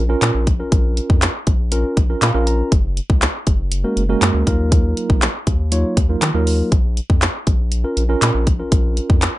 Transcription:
Already playing: analog synth bass A#1
0.09 tine electric piano C#4 F4 A#4
0.22 analog synth bass A#2, clap, closed hi-hat
0.35 analog synth bass A#1
0.47 kick, closed hi-hat
0.59 tine electric piano C#4 F4 A#4
0.72 analog synth bass A#1, kick, closed hi-hat
0.97 closed hi-hat
1.10 analog synth bass F2, kick
1.22 clap, closed hi-hat
1.47 analog synth bass A#1, kick, closed hi-hat
1.72 tine electric piano C#4 F4 A#4, closed hi-hat
1.97 analog synth bass A#1, kick, closed hi-hat
2.09 tine electric piano C#4 F4 A#4
2.22 analog synth bass A#2, tine electric piano F5, clap, closed hi-hat
2.34 analog synth bass A#1, tine electric piano C#4 F4 A#4
2.47 tine electric piano A#5, closed hi-hat
2.72 analog synth bass F#1, kick, closed hi-hat
2.97 closed hi-hat
3.10 analog synth bass C#2, kick
3.22 clap, closed hi-hat
3.47 analog synth bass F#1, kick, closed hi-hat
3.72 closed hi-hat
3.84 tine electric piano G#3 A#3 C#4 F#4 A#4
3.97 analog synth bass F#1, closed hi-hat
4.09 tine electric piano G#3 A#3 C#4 F#4 A#4
4.22 analog synth bass F#2, clap, closed hi-hat
4.34 analog synth bass D2
4.46 analog synth bass D#2, tine electric piano F#3 A#3 D#4 F4 A#4, kick, closed hi-hat
4.72 kick, closed hi-hat
4.97 closed hi-hat
5.10 analog synth bass A#1, kick
5.22 clap, closed hi-hat
5.47 analog synth bass D#2, kick, closed hi-hat
5.72 tine electric piano F#3 A#3 D#4 F4 C#5, closed hi-hat
5.97 analog synth bass D#2, kick, closed hi-hat
6.09 tine electric piano F#3 A#3 D#4 F4 A#4
6.22 analog synth bass D#3, clap, closed hi-hat
6.34 analog synth bass D#2, tine electric piano F#3 A#3 D#4 F4 A#4
6.47 open hi-hat
6.72 analog synth bass A#1, kick, closed hi-hat
6.97 closed hi-hat
7.10 analog synth bass F2, kick
7.22 clap, closed hi-hat
7.47 analog synth bass A#1, kick, closed hi-hat
7.72 closed hi-hat
7.84 tine electric piano C#4 F4 A#4
7.97 analog synth bass A#1, closed hi-hat
8.09 tine electric piano C#4 F4 A#4
8.22 analog synth bass A#2, clap, closed hi-hat
8.35 analog synth bass A#1
8.47 kick, closed hi-hat
8.59 tine electric piano C#4 F4 A#4
8.72 analog synth bass A#1, kick, closed hi-hat
8.97 closed hi-hat
9.10 analog synth bass F2, kick
9.22 clap, closed hi-hat

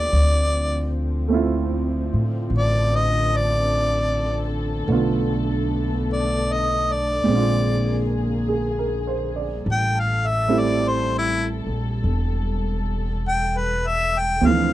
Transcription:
Already playing: upright piano C#3 B3 E4 G4, harmonica D5
0.13 upright bass D2, string section D3 F3 C4
1.28 upright piano A3 C4
1.32 upright piano E4 F4
2.13 upright bass A2
2.50 upright bass A1, string section A4
2.58 harmonica D5
2.96 harmonica D#5
3.37 harmonica D5
4.87 upright bass B1, upright piano D3 A3 B3, string section A3 B3
4.92 upright piano F4
6.13 harmonica D5
6.53 harmonica D#5
6.93 harmonica D5
7.23 upright bass A#1, upright piano G#3 C4, string section G#4
7.28 string section A#3, upright piano D4
7.35 upright piano F4
8.48 upright piano G#4
8.79 upright piano A#4
9.07 upright piano C5
9.36 upright piano D5
9.66 upright bass A1, string section G3 A4
9.72 harmonica G5
10.00 harmonica F5
10.27 harmonica E5
10.48 upright piano G3 A3 C4 E4
10.60 harmonica D5
10.89 harmonica C5
11.19 harmonica E4
11.67 upright bass A#1
12.04 upright bass E1
13.28 harmonica G5
13.58 harmonica B4
13.87 harmonica E5
14.19 harmonica G5
14.41 upright bass D2, string section C3 D3 D4, upright piano F3 A3 C4
14.47 upright piano E3, harmonica F5

